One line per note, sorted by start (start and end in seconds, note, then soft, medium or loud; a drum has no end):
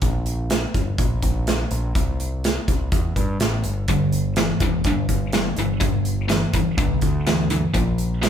0.02 0.64 A#1 medium
0.02 kick medium
0.02 closed hi-hat medium
0.26 closed hi-hat medium
0.50 snare loud
0.50 closed hi-hat medium
0.74 0.95 G1 medium
0.74 kick medium
0.74 closed hi-hat medium
0.98 1.20 A#1 medium
0.98 kick loud
0.98 closed hi-hat medium
1.22 1.64 A#1 medium
1.22 kick medium
1.22 closed hi-hat medium
1.47 snare loud
1.47 closed hi-hat medium
1.71 1.92 A#1 medium
1.71 closed hi-hat medium
1.95 2.57 C2 medium
1.95 kick loud
1.95 closed hi-hat medium
2.20 closed hi-hat soft
2.44 snare medium
2.44 closed hi-hat medium
2.68 2.89 C2 medium
2.68 kick medium
2.68 closed hi-hat medium
2.92 3.13 E2 medium
2.92 kick loud
2.92 closed hi-hat medium
3.16 3.37 G2 medium
3.16 kick medium
3.16 closed hi-hat medium
3.39 3.62 A1 medium
3.39 snare loud
3.39 closed hi-hat medium
3.64 3.86 G1 medium
3.64 closed hi-hat medium
3.88 4.51 G1 medium
3.88 4.33 G2 medium
3.88 4.33 D3 medium
3.88 kick medium
3.88 closed hi-hat medium
4.12 closed hi-hat medium
4.36 4.59 G2 medium
4.36 4.59 E3 medium
4.36 snare loud
4.36 closed hi-hat medium
4.60 4.82 E1 medium
4.60 4.83 G2 medium
4.60 4.84 E3 medium
4.60 kick medium
4.60 closed hi-hat medium
4.84 5.06 G1 loud
4.84 5.30 G2 medium
4.84 5.30 D3 medium
4.84 kick loud
4.84 closed hi-hat medium
5.09 5.51 G1 medium
5.09 kick medium
5.09 closed hi-hat medium
5.33 5.56 G2 medium
5.33 5.56 E3 medium
5.33 snare loud
5.33 closed hi-hat medium
5.56 5.78 G1 medium
5.56 5.79 G2 medium
5.56 5.80 E3 medium
5.56 closed hi-hat soft
5.80 6.44 G1 medium
5.80 6.25 G2 medium
5.80 6.25 D3 medium
5.80 kick loud
5.80 closed hi-hat medium
6.05 closed hi-hat soft
6.28 6.51 G2 medium
6.28 6.51 E3 medium
6.28 snare loud
6.28 closed hi-hat medium
6.53 6.75 G1 medium
6.53 6.76 G2 medium
6.53 6.76 E3 medium
6.53 kick medium
6.53 closed hi-hat medium
6.77 6.99 B1 loud
6.77 7.22 G2 medium
6.77 7.22 D3 medium
6.77 kick loud
6.77 closed hi-hat medium
7.01 7.65 D2 medium
7.01 kick medium
7.01 closed hi-hat medium
7.27 7.49 G2 medium
7.27 7.49 E3 medium
7.27 snare loud
7.27 closed hi-hat medium
7.50 7.73 G2 medium
7.50 7.73 E3 medium
7.50 closed hi-hat medium
7.74 8.29 A#1 medium
7.74 8.18 A#2 medium
7.74 8.18 F3 medium
7.74 kick medium
7.74 closed hi-hat medium
7.98 closed hi-hat medium
8.22 8.29 A#2 medium
8.22 8.29 G3 medium
8.22 snare loud
8.22 closed hi-hat medium